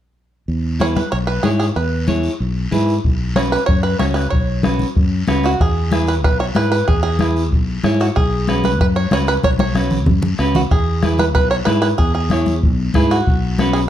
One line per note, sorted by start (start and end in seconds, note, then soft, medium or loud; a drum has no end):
0.48 0.99 E2 medium
0.48 long guiro medium
0.79 1.02 E4 medium
0.79 1.02 G#4 soft
0.79 1.03 B4 medium
0.79 0.86 C#5 medium
0.79 high conga medium
0.79 short guiro medium
0.96 1.11 B4 medium
0.96 high conga medium
0.96 short guiro medium
1.11 1.38 B1 medium
1.11 1.17 C#5 medium
1.11 long guiro medium
1.27 1.44 B4 medium
1.43 1.70 G#2 medium
1.43 1.67 E4 medium
1.43 1.48 G#4 medium
1.43 1.67 G#4 medium
1.43 1.67 C#5 medium
1.43 high conga medium
1.43 short guiro medium
1.59 1.65 G#4 medium
1.59 short guiro medium
1.75 2.27 E2 medium
1.75 2.06 B4 medium
1.75 long guiro medium
2.07 2.30 E4 medium
2.07 2.30 G#4 medium
2.07 2.31 C#5 medium
2.07 high conga medium
2.07 short guiro medium
2.23 short guiro medium
2.40 2.66 B1 medium
2.40 long guiro medium
2.71 2.98 G#2 medium
2.71 2.94 E4 medium
2.71 2.94 G#4 medium
2.71 2.95 B4 medium
2.71 high conga medium
2.71 short guiro medium
2.88 short guiro medium
3.04 3.56 B1 medium
3.04 bombo low medium
3.04 long guiro medium
3.36 3.58 C#4 medium
3.36 3.59 F#4 medium
3.36 3.59 B4 medium
3.36 3.41 C#5 medium
3.36 bombo rim medium
3.36 high conga medium
3.36 short guiro medium
3.52 3.66 B4 medium
3.52 short guiro medium
3.66 3.94 F#2 loud
3.66 3.83 C#5 medium
3.66 bombo low medium
3.66 long guiro medium
3.83 3.98 B4 medium
3.99 4.26 C#2 medium
3.99 4.22 C#4 medium
3.99 4.22 F#4 medium
3.99 4.04 C#5 medium
3.99 4.22 C#5 medium
3.99 bombo rim medium
3.99 high conga medium
3.99 short guiro medium
4.14 4.30 B4 medium
4.14 bombo rim medium
4.14 short guiro medium
4.30 4.84 B1 medium
4.30 4.61 C#5 medium
4.30 bombo low medium
4.30 long guiro medium
4.63 4.86 C#4 medium
4.63 4.86 F#4 medium
4.63 4.86 B4 medium
4.63 bombo rim medium
4.63 high conga medium
4.63 short guiro medium
4.79 high conga medium
4.79 short guiro medium
4.95 5.22 F#2 medium
4.95 bombo low medium
4.95 long guiro medium
5.27 5.54 C#2 medium
5.27 5.50 C#4 medium
5.27 5.50 F#4 medium
5.27 5.51 B4 medium
5.27 bombo rim medium
5.27 high conga medium
5.27 short guiro medium
5.43 5.61 F#4 medium
5.43 bombo rim medium
5.43 short guiro medium
5.59 6.24 E2 medium
5.59 6.10 G#4 medium
5.59 bombo low medium
5.59 long guiro medium
5.91 6.14 E4 medium
5.91 6.14 G#4 medium
5.91 6.14 B4 medium
5.91 bombo rim medium
5.91 high conga medium
5.91 short guiro medium
6.07 6.13 B4 medium
6.07 short guiro medium
6.24 6.50 B1 medium
6.24 6.40 B4 medium
6.24 bombo low medium
6.24 long guiro medium
6.40 6.45 C#5 medium
6.55 6.81 G#2 medium
6.55 6.78 E4 medium
6.55 6.78 G#4 medium
6.55 6.70 B4 medium
6.55 6.78 B4 medium
6.55 bombo rim medium
6.55 high conga medium
6.55 short guiro medium
6.72 6.86 B4 medium
6.72 short guiro medium
6.87 7.53 E2 loud
6.87 7.02 G#4 medium
6.87 bombo low medium
6.87 long guiro medium
7.03 7.48 G#4 medium
7.19 7.42 E4 medium
7.19 7.42 G#4 medium
7.19 7.43 B4 medium
7.19 bombo rim medium
7.19 high conga medium
7.19 short guiro medium
7.36 short guiro medium
7.52 7.78 B1 medium
7.52 bombo low medium
7.52 long guiro medium
7.84 8.09 G#2 medium
7.84 8.06 E4 medium
7.84 8.06 G#4 medium
7.84 8.07 C#5 medium
7.84 bombo rim medium
7.84 high conga medium
7.84 short guiro medium
8.00 8.06 F#4 medium
8.00 bombo rim medium
8.00 short guiro medium
8.15 8.80 B1 medium
8.15 8.65 G#4 medium
8.15 bombo low medium
8.15 long guiro medium
8.48 8.70 C#4 medium
8.48 8.70 F#4 medium
8.48 8.71 B4 medium
8.48 bombo rim medium
8.48 high conga medium
8.48 short guiro medium
8.64 8.79 B4 medium
8.64 high conga medium
8.64 short guiro medium
8.79 9.05 F#2 medium
8.79 8.86 B4 loud
8.79 bombo low medium
8.79 long guiro medium
8.96 9.12 C#5 medium
9.11 9.37 C#2 medium
9.11 9.34 C#4 medium
9.11 9.34 F#4 medium
9.11 9.34 B4 medium
9.11 9.18 C#5 medium
9.11 bombo rim medium
9.11 high conga medium
9.11 short guiro medium
9.27 9.33 B4 loud
9.27 short guiro medium
9.43 10.07 B1 medium
9.43 9.49 C#5 loud
9.43 bombo low medium
9.43 high conga medium
9.43 long guiro medium
9.59 10.04 C#5 medium
9.59 high conga loud
9.75 9.98 C#4 medium
9.75 9.98 F#4 medium
9.75 9.98 B4 medium
9.75 bombo rim medium
9.75 high conga medium
9.75 short guiro medium
9.90 low conga medium
9.90 short guiro medium
10.06 10.33 F#2 medium
10.06 bombo low medium
10.06 low conga medium
10.06 long guiro medium
10.22 low conga medium
10.38 10.65 C#2 medium
10.38 10.62 C#4 medium
10.38 10.62 F#4 medium
10.38 10.62 B4 medium
10.38 bombo rim medium
10.38 short guiro medium
10.55 10.61 F#4 medium
10.55 low conga medium
10.55 short guiro medium
10.71 11.35 E2 medium
10.71 11.21 G#4 medium
10.71 bombo low medium
10.71 long guiro medium
11.03 11.26 E4 medium
11.03 11.26 G#4 medium
11.03 11.26 B4 medium
11.03 bombo rim medium
11.03 high conga medium
11.03 short guiro medium
11.18 11.24 B4 medium
11.18 high conga medium
11.18 short guiro medium
11.34 11.61 B1 medium
11.34 11.50 B4 medium
11.34 bombo low medium
11.34 long guiro medium
11.51 11.56 C#5 medium
11.65 11.92 G#2 medium
11.65 11.89 E4 medium
11.65 11.90 G#4 medium
11.65 11.70 B4 medium
11.65 11.90 B4 medium
11.65 bombo rim medium
11.65 high conga medium
11.65 short guiro medium
11.82 11.87 B4 medium
11.82 bombo rim medium
11.82 short guiro medium
11.98 12.65 E2 medium
11.98 12.13 G#4 medium
11.98 bombo low medium
11.98 long guiro medium
12.15 12.59 G#4 medium
12.30 12.53 E4 medium
12.30 12.54 G#4 medium
12.30 12.54 C#5 medium
12.30 bombo rim medium
12.30 high conga medium
12.30 short guiro medium
12.46 high conga medium
12.46 short guiro medium
12.62 12.89 B1 medium
12.62 bombo low medium
12.62 long guiro medium
12.94 13.20 G#2 medium
12.94 13.17 E4 medium
12.94 13.17 G#4 medium
12.94 13.17 B4 medium
12.94 bombo low medium
12.94 bombo rim medium
12.94 high conga medium
12.94 short guiro medium
13.10 13.73 F#4 medium
13.10 bombo rim medium
13.10 short guiro medium
13.26 13.89 B1 medium
13.26 bombo low medium
13.26 long guiro medium
13.59 13.81 C#4 medium
13.59 13.82 F#4 medium
13.59 13.82 B4 medium
13.59 bombo rim medium
13.59 high conga medium
13.59 short guiro medium
13.73 13.78 G#4 medium
13.73 short guiro medium